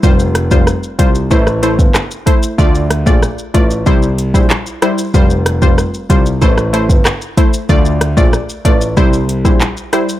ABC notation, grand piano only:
X:1
M:4/4
L:1/16
Q:1/4=94
K:Dm
V:1 name="Grand piano" clef=bass
F,,,3 F,,, z2 C,,2 A,,,3 G,,, z4 | D,,3 B,,, z2 A,,,2 C,,3 B,,, z4 | F,,,3 F,,, z2 C,,2 A,,,3 G,,, z4 | D,,3 B,,, z2 A,,,2 C,,3 B,,, z4 |]